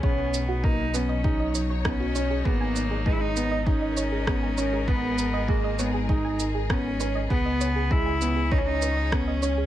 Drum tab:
SH |-x-x-x-x|-x-x-x-x|-x-x-x-x|-x-x-x-x|
SD |------r-|------r-|------r-|------r-|
BD |o-o-o-o-|o-o-o-o-|o-o-o-o-|o-o-o-o-|